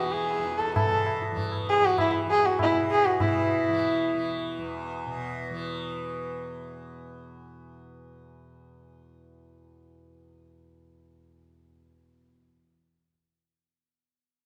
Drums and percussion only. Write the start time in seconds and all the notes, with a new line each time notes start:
0.06 tabla te
0.14 tabla tin
0.30 tabla na
0.45 tabla te
0.52 tabla te
0.60 tabla ke
0.67 tabla te
0.76 tabla na, tabla ge
0.91 tabla te
1.06 tabla na
1.22 tabla te
1.37 tabla tin, tabla ge
1.52 tabla na
1.67 tabla te
1.83 tabla te
1.98 tabla na, tabla ge
2.28 tabla te
2.43 tabla te
2.59 tabla na, tabla ge
2.90 tabla te
3.05 tabla te
3.20 tabla na, tabla ge